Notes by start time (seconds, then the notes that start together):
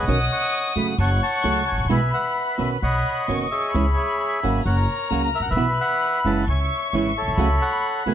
Already playing: C#5 D#5 F#5
0.03 A#1
0.07 B1 B2 D#3 C#4 F#4 D#6
0.32 F#5 C#6
0.76 F#1 C#3 F#3 A3 C#4 F#4 B5
0.98 F#1 C#5 F#5 A5 C#6
1.23 F#5 A5 C#6
1.44 C#2 C#3 F#3 A3 C#4 F#4
1.68 G#5
1.72 G#1
1.78 A1
1.85 A#1
1.89 B1 B2 E3 G#3 B3 E4 B4 E5 G#5 B5
2.14 B4 F#5
2.58 B1 B2 D#3 C#4 F#4 E5
2.81 B1 C#5 D#5 F#5 B5
3.27 F#1 B2 D#3 C#4 F#4 C#5 C#6
3.51 G#4 C#5 E5
3.73 C#2 C#3 E3 G#3 C#4 E4 B5
3.97 E5 G#5 B5
4.42 G#1 C#3 F#3 A#3 C#4 F#4 G#5
4.65 F#1 A#4 C#5 F#5 A#5
5.10 C#2 C#3 F#3 A#3 C#4 F#4 C#5
5.35 E5
5.40 G#1 F#5
5.46 A1
5.50 A#1 B4 E5
5.56 B1 B2 E3 B3 E4 F#4 B5
5.80 E5 F#5 B5
6.25 F#1 C#3 E3 G#3 C#4 E4 A5
6.47 C#2 C#5 E5 G#5 C#6
6.93 G#1 C#3 E3 G#3 C#4 E4 C#5
7.17 A4 C#5 E5
7.22 A#1
7.28 B1
7.32 C2
7.38 C#2 C#3 F#3 A3 C#4 F#4 B5
7.62 F#5 B5
8.06 C#2 B2 D#3 A3 B3 F#4 G#5